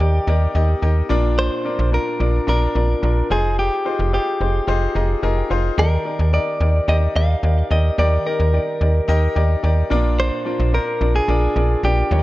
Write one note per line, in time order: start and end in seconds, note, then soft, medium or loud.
0.00 0.20 D#2 medium
0.00 1.12 D#3 medium
0.00 0.27 D#4 loud
0.00 0.27 G4 medium
0.00 1.07 G4 medium
0.00 0.28 A#4 medium
0.00 0.28 D5 loud
0.27 0.47 D#2 loud
0.27 0.52 D#4 loud
0.27 0.52 G4 medium
0.27 0.52 A#4 medium
0.27 0.52 D5 loud
0.54 0.75 D#2 loud
0.54 0.79 D#4 medium
0.54 0.79 G4 medium
0.54 0.79 A#4 medium
0.54 0.80 D#5 medium
0.82 1.02 D#2 medium
0.82 1.06 D#4 medium
0.82 1.07 G4 medium
0.82 1.07 A#4 medium
0.82 1.07 D#5 medium
0.82 1.08 G5 medium
1.09 1.50 A#1 loud
1.09 1.89 A#2 medium
1.09 1.58 D4 loud
1.09 1.58 F4 medium
1.09 1.59 A#4 medium
1.09 1.59 D5 loud
1.39 1.89 C5 loud
1.64 1.89 D4 medium
1.64 1.89 F4 medium
1.64 1.89 A#4 medium
1.64 1.90 D5 medium
1.79 1.99 A#1 loud
1.92 2.17 D4 medium
1.92 2.17 F4 medium
1.92 2.17 A#4 medium
1.92 2.48 A#4 loud
1.92 2.17 D5 medium
2.19 2.40 A#1 loud
2.19 2.44 D4 medium
2.19 2.44 F4 medium
2.19 2.45 A#4 medium
2.19 2.45 D5 medium
2.47 2.68 A#1 loud
2.47 2.72 D4 medium
2.47 2.72 F4 medium
2.47 2.72 A#4 medium
2.47 3.31 A#4 loud
2.47 2.72 D5 loud
2.75 2.95 A#1 loud
2.75 2.99 D4 medium
2.75 2.99 F4 medium
2.75 3.00 A#4 medium
2.75 3.00 D5 medium
3.02 3.23 A#1 loud
3.02 3.27 D4 medium
3.02 3.27 F4 medium
3.02 3.27 A#4 medium
3.02 3.27 D5 medium
3.30 3.70 F1 loud
3.30 3.78 D#4 medium
3.30 3.79 F4 medium
3.30 3.79 G#4 medium
3.30 3.59 G#4 medium
3.30 3.79 C5 loud
3.59 4.13 G4 medium
3.85 4.09 D#4 medium
3.85 4.10 F4 medium
3.85 4.10 G#4 medium
3.85 4.10 C5 medium
3.99 4.19 F1 loud
4.12 4.37 D#4 medium
4.12 4.37 F4 medium
4.12 5.47 G4 medium
4.12 4.37 G#4 medium
4.12 4.37 C5 medium
4.40 4.60 F1 medium
4.40 4.64 D#4 medium
4.40 4.65 F4 medium
4.40 4.65 G#4 medium
4.40 4.65 C5 medium
4.67 4.88 F1 loud
4.67 4.92 D#4 loud
4.67 4.92 F4 medium
4.67 4.92 G#4 medium
4.67 4.92 C5 loud
4.95 5.15 F1 loud
4.95 5.19 D#4 medium
4.95 5.20 F4 medium
4.95 5.20 G#4 medium
4.95 5.20 D#5 loud
4.95 5.21 A#5 medium
5.22 5.43 F1 loud
5.22 5.47 D#4 medium
5.22 5.47 F4 medium
5.22 5.47 G#4 medium
5.22 5.47 A#4 loud
5.22 5.36 G#5 medium
5.37 5.49 G5 medium
5.50 5.70 F1 loud
5.50 5.74 D#4 medium
5.50 5.75 F4 medium
5.50 5.75 G#4 medium
5.50 5.75 C5 loud
5.50 5.76 F5 medium
5.77 5.98 D#2 loud
5.77 6.57 D#3 medium
5.77 6.02 D#4 medium
5.77 6.02 G4 medium
5.77 6.02 A#4 medium
5.77 6.33 A#4 medium
5.77 6.02 D5 loud
6.05 6.29 D#4 medium
6.05 6.30 G4 medium
6.05 6.30 A#4 medium
6.05 6.30 D5 medium
6.19 6.39 D#2 loud
6.32 6.57 D#4 medium
6.32 6.57 G4 medium
6.32 6.57 A#4 medium
6.32 6.85 D5 loud
6.32 6.58 D#5 medium
6.60 6.80 D#2 loud
6.60 6.85 D#4 medium
6.60 6.85 G4 medium
6.60 6.85 A#4 medium
6.60 6.85 D5 medium
6.88 7.08 D#2 loud
6.88 7.12 D#4 loud
6.88 7.12 G4 medium
6.88 7.12 A#4 medium
6.88 7.13 D5 loud
6.88 6.96 D#5 loud
7.15 7.36 D#2 loud
7.15 7.40 D#4 medium
7.15 7.40 G4 medium
7.15 7.40 A#4 medium
7.15 7.40 D5 medium
7.15 7.71 F5 loud
7.43 7.63 D#2 loud
7.43 7.67 D#4 medium
7.43 7.67 G4 medium
7.43 7.67 A#4 medium
7.43 7.68 D5 medium
7.70 7.91 D#2 loud
7.70 7.95 D#4 medium
7.70 7.95 G4 medium
7.70 7.95 A#4 medium
7.70 7.95 D5 medium
7.70 7.99 D#5 medium
7.98 8.18 D#2 loud
7.98 8.77 D#3 medium
7.98 8.22 D#4 loud
7.98 8.22 G4 medium
7.98 8.23 A#4 medium
7.98 8.23 D5 loud
7.98 8.27 D5 loud
8.25 8.50 D#4 medium
8.25 8.50 G4 medium
8.25 8.50 A#4 medium
8.25 9.87 A#4 medium
8.25 8.50 D5 medium
8.40 8.59 D#2 loud
8.53 8.77 D#4 medium
8.53 8.77 G4 medium
8.53 8.78 A#4 medium
8.53 8.78 D5 medium
8.80 9.01 D#2 medium
8.80 9.05 D#4 medium
8.80 9.05 G4 medium
8.80 9.05 A#4 medium
8.80 9.05 D5 medium
9.08 9.28 D#2 loud
9.08 9.32 D#4 loud
9.08 9.33 G4 loud
9.08 9.33 A#4 loud
9.08 9.33 D#5 loud
9.35 9.56 D#2 loud
9.35 9.60 D#4 medium
9.35 9.60 G4 medium
9.35 9.60 A#4 medium
9.35 9.60 D5 loud
9.63 9.83 D#2 medium
9.63 9.87 D#4 medium
9.63 9.87 G4 medium
9.63 9.88 A#4 medium
9.63 9.88 D5 loud
9.90 10.31 A#1 loud
9.90 10.69 A#2 medium
9.90 10.39 D4 loud
9.90 10.39 F4 loud
9.90 10.39 A#4 medium
9.90 10.39 D5 loud
10.20 10.74 C5 loud
10.45 10.70 D4 medium
10.45 10.70 F4 medium
10.45 10.70 A#4 medium
10.45 10.70 D5 medium
10.60 10.79 A#1 loud
10.73 10.97 D4 medium
10.73 10.98 F4 medium
10.73 10.98 A#4 medium
10.73 11.15 A#4 loud
10.73 10.98 C5 medium
11.01 11.21 A#1 loud
11.01 11.25 D4 medium
11.01 11.25 F4 medium
11.01 11.25 A#4 medium
11.01 11.26 D5 medium
11.16 11.84 G#4 loud
11.28 11.48 A#1 loud
11.28 11.53 D4 loud
11.28 11.53 F4 medium
11.28 11.53 A#4 medium
11.28 11.53 D5 loud
11.56 11.76 A#1 loud
11.56 11.80 D4 medium
11.56 11.80 F4 medium
11.56 11.80 A#4 medium
11.56 11.81 D5 medium
11.83 12.03 A#1 loud
11.83 12.08 D4 medium
11.83 12.08 F4 medium
11.83 12.23 G4 loud
11.83 12.08 A#4 medium
11.83 12.08 D5 medium
12.11 12.23 D#2 loud
12.11 12.23 D#3 medium
12.11 12.23 D#4 medium
12.11 12.23 G4 medium
12.11 12.23 A#4 medium
12.11 12.18 C#5 medium
12.19 12.23 D5 medium